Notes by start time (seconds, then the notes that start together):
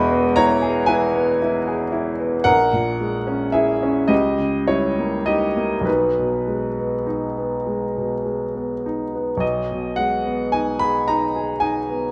Already playing: E1 E2 B2 G#3 D#5 E5 B5 C#6
0.10 B3
0.36 E4 C#5 A#5
0.62 G#4
0.86 E4 B4 G#5
1.15 B3
1.42 E4
1.68 G#4
1.92 E4
2.20 B3
2.44 A#1 A#4 F#5
2.73 A#2
3.01 G#3
3.27 C#4
3.52 E4 G#4 E5
3.83 C#4
4.08 C#2 G4 D#5
4.38 C#3
4.68 G3 E4 C#5
4.99 A#3
5.26 D#4 G4 D#5
5.57 A#3
5.81 B1
5.85 D#4 B4
6.19 B2
6.47 G#3
6.79 B3
7.07 D#4
7.37 B3
7.67 G#3
7.97 B2
8.26 G#3
8.55 B3
8.86 D#4
9.15 B3
9.37 B1 D#5
9.71 B2
9.96 G#3 F#5
10.26 B3
10.52 D#4 G#5
10.79 G#4 B5
11.08 D#4 A#5
11.36 G#4
11.60 D#4 G#5
11.90 B3